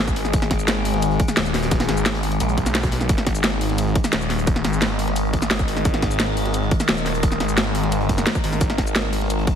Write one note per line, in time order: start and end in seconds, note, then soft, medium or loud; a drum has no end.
0.00 0.32 G#1 loud
0.00 9.55 D#3 medium
0.00 9.55 G#3 medium
0.00 3.07 G#4 medium
0.07 kick loud
0.07 snare medium
0.07 shaker medium
0.16 closed hi-hat medium
0.16 open hi-hat medium
0.25 snare soft
0.25 shaker soft
0.33 1.18 G#1 loud
0.33 kick loud
0.33 closed hi-hat medium
0.33 shaker soft
0.42 snare soft
0.42 closed hi-hat soft
0.51 kick medium
0.51 snare soft
0.51 closed hi-hat medium
0.59 shaker medium
0.67 snare loud
0.67 closed hi-hat medium
0.67 closed hi-hat loud
0.67 shaker medium
0.77 snare soft
0.85 open hi-hat medium
0.94 snare soft
0.94 closed hi-hat soft
1.02 closed hi-hat medium
1.02 closed hi-hat loud
1.02 shaker medium
1.11 closed hi-hat soft
1.19 kick loud
1.19 closed hi-hat medium
1.28 snare soft
1.28 closed hi-hat soft
1.28 shaker medium
1.37 1.87 D#1 loud
1.37 snare loud
1.37 closed hi-hat loud
1.45 snare medium
1.45 shaker medium
1.54 snare soft
1.54 snare loud
1.54 closed hi-hat medium
1.54 open hi-hat medium
1.63 snare medium
1.63 closed hi-hat medium
1.63 shaker soft
1.71 kick loud
1.71 snare loud
1.71 closed hi-hat loud
1.71 closed hi-hat medium
1.71 shaker medium
1.80 snare loud
1.80 snare medium
1.80 closed hi-hat soft
1.80 closed hi-hat medium
1.80 shaker soft
1.89 2.39 G#1 medium
1.89 snare medium
1.89 snare soft
1.89 closed hi-hat medium
1.97 snare soft
1.97 shaker medium
2.06 snare loud
2.06 closed hi-hat loud
2.06 closed hi-hat medium
2.06 shaker medium
2.14 snare loud
2.14 closed hi-hat medium
2.23 snare medium
2.23 open hi-hat medium
2.31 closed hi-hat medium
2.31 closed hi-hat soft
2.40 2.56 A#1 loud
2.40 closed hi-hat loud
2.40 closed hi-hat medium
2.40 shaker medium
2.49 closed hi-hat soft
2.49 shaker soft
2.57 3.08 B1 loud
2.57 kick medium
2.57 closed hi-hat medium
2.66 snare soft
2.66 closed hi-hat soft
2.66 shaker medium
2.75 snare loud
2.75 closed hi-hat loud
2.75 closed hi-hat medium
2.83 kick loud
2.83 snare loud
2.83 closed hi-hat medium
2.83 shaker medium
2.92 snare loud
2.92 closed hi-hat medium
2.92 open hi-hat medium
3.01 snare soft
3.01 shaker soft
3.09 3.94 G#1 loud
3.09 9.55 A#4 medium
3.09 8.59 D#5 medium
3.09 kick loud
3.09 closed hi-hat medium
3.09 closed hi-hat loud
3.09 shaker soft
3.17 snare medium
3.17 closed hi-hat soft
3.27 kick medium
3.27 snare soft
3.27 closed hi-hat medium
3.35 shaker medium
3.44 snare loud
3.44 closed hi-hat loud
3.44 closed hi-hat medium
3.44 shaker medium
3.52 snare soft
3.61 open hi-hat medium
3.69 snare soft
3.69 closed hi-hat soft
3.78 closed hi-hat loud
3.78 closed hi-hat medium
3.78 shaker medium
3.87 closed hi-hat soft
3.95 kick loud
3.95 closed hi-hat medium
4.04 snare medium
4.04 closed hi-hat soft
4.04 shaker medium
4.13 4.63 D#1 loud
4.13 snare loud
4.13 closed hi-hat loud
4.13 closed hi-hat medium
4.21 snare medium
4.21 shaker soft
4.30 snare soft
4.30 closed hi-hat medium
4.30 open hi-hat medium
4.38 closed hi-hat soft
4.38 shaker soft
4.47 kick loud
4.47 closed hi-hat medium
4.47 shaker soft
4.56 snare medium
4.56 closed hi-hat soft
4.64 5.49 G#1 loud
4.64 snare soft
4.64 closed hi-hat medium
4.73 shaker medium
4.81 snare loud
4.81 closed hi-hat medium
4.81 shaker soft
4.90 snare medium
4.99 closed hi-hat medium
4.99 open hi-hat medium
5.07 snare medium
5.07 closed hi-hat soft
5.16 closed hi-hat medium
5.16 shaker soft
5.25 closed hi-hat soft
5.33 kick medium
5.33 closed hi-hat medium
5.42 snare medium
5.42 closed hi-hat soft
5.42 shaker medium
5.50 5.84 G#1 loud
5.50 snare loud
5.50 closed hi-hat loud
5.50 closed hi-hat medium
5.59 kick loud
5.59 snare soft
5.59 shaker soft
5.68 closed hi-hat medium
5.68 open hi-hat medium
5.77 snare soft
5.77 shaker soft
5.85 6.70 G#1 loud
5.85 kick loud
5.85 closed hi-hat loud
5.85 closed hi-hat medium
5.85 shaker soft
5.94 snare soft
5.94 closed hi-hat soft
6.02 kick medium
6.02 snare soft
6.02 closed hi-hat medium
6.11 shaker medium
6.20 snare loud
6.20 closed hi-hat medium
6.20 shaker soft
6.28 snare soft
6.36 open hi-hat medium
6.46 snare medium
6.46 closed hi-hat soft
6.54 closed hi-hat medium
6.54 shaker soft
6.63 closed hi-hat soft
6.71 kick loud
6.71 closed hi-hat medium
6.80 snare soft
6.80 closed hi-hat soft
6.80 shaker medium
6.88 7.39 D#1 loud
6.88 snare loud
6.88 closed hi-hat medium
6.97 snare medium
6.97 shaker soft
7.05 snare soft
7.05 closed hi-hat medium
7.05 open hi-hat medium
7.15 closed hi-hat soft
7.15 shaker soft
7.23 kick loud
7.23 closed hi-hat loud
7.23 closed hi-hat medium
7.23 shaker medium
7.32 snare soft
7.32 closed hi-hat soft
7.32 shaker soft
7.40 8.00 G#1 loud
7.40 snare soft
7.40 closed hi-hat medium
7.49 shaker medium
7.57 snare loud
7.57 closed hi-hat medium
7.57 shaker soft
7.66 snare medium
7.75 closed hi-hat medium
7.75 open hi-hat medium
7.83 snare soft
7.83 closed hi-hat soft
7.92 closed hi-hat medium
7.92 shaker soft
8.00 8.25 G1 loud
8.00 closed hi-hat soft
8.09 kick medium
8.09 closed hi-hat medium
8.17 snare soft
8.17 closed hi-hat soft
8.17 shaker medium
8.26 snare loud
8.26 closed hi-hat medium
8.35 kick loud
8.35 snare soft
8.35 shaker soft
8.44 8.60 G#1 loud
8.44 closed hi-hat medium
8.44 open hi-hat medium
8.53 snare soft
8.53 shaker soft
8.61 9.46 G#1 loud
8.61 9.55 G#4 medium
8.61 kick loud
8.61 closed hi-hat medium
8.61 shaker medium
8.69 snare soft
8.69 closed hi-hat soft
8.78 kick medium
8.78 snare soft
8.78 closed hi-hat medium
8.87 shaker medium
8.95 snare loud
8.95 closed hi-hat medium
8.95 shaker medium
9.04 snare soft
9.12 open hi-hat medium
9.21 snare soft
9.21 closed hi-hat soft
9.30 closed hi-hat medium
9.30 shaker soft
9.39 closed hi-hat soft
9.47 kick loud
9.47 closed hi-hat medium